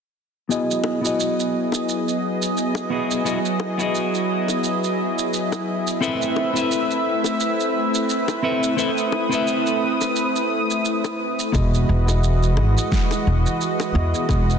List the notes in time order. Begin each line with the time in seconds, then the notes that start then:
0.49 F#3 B3 E4 F#4 G#4 D#5, shaker
0.71 shaker
0.84 high bongo
1.01 B3 E4 F#4, shaker
1.06 G#4 D#5
1.20 shaker
1.40 shaker
1.72 high bongo, shaker
1.89 shaker
2.08 shaker
2.42 shaker
2.57 shaker
2.75 high bongo, shaker
2.90 B3 E4 F#4 G#4 D#5
3.11 shaker
3.25 B3 E4 F#4 G#4 D#5, shaker
3.45 shaker
3.60 high bongo
3.78 B3 E4 F#4 G#4, shaker
3.83 D#5
3.95 shaker
4.15 shaker
4.48 high bongo, shaker
4.64 shaker
4.84 shaker
5.19 shaker
5.34 shaker
5.52 high bongo, shaker
5.87 shaker
6.01 A3 C4 E4 A4 B4 E5, shaker
6.22 shaker
6.36 high bongo
6.53 C4 E4 A4 B4, shaker
6.58 E5
6.71 shaker
6.91 shaker
7.24 high bongo, shaker
7.40 shaker
7.60 shaker
7.95 shaker
8.10 shaker
8.28 high bongo, shaker
8.42 C4 E4 A4 B4 E5
8.63 shaker
8.76 C4 E4 A4 B4 E5 D#6, shaker
8.98 shaker
9.12 high bongo
9.29 C4 E4 A4, shaker
9.33 B4 E5
9.47 shaker
9.67 shaker
10.01 high bongo, shaker
10.16 shaker
10.36 shaker
10.71 shaker
10.85 shaker
11.04 high bongo, shaker
11.39 shaker
11.52 E1 E3 G#3 B3 E4 F#4 G#4 B4 D#5, kick, high bongo, shaker
11.74 shaker
11.89 E1
12.05 B3 E4 F#4 G#4, high bongo, shaker
12.10 D#5
12.24 shaker
12.43 shaker
12.57 G#1, high bongo
12.78 shaker
12.92 kick, snare, shaker
13.11 high bongo, shaker
13.27 E1
13.46 shaker
13.61 shaker
13.80 high bongo, shaker
13.94 E2 B3 E4 F#4 G#4 D#5
14.15 shaker
14.28 E1 B3 E4 F#4 G#4 D#5, kick, high bongo, shaker
14.50 shaker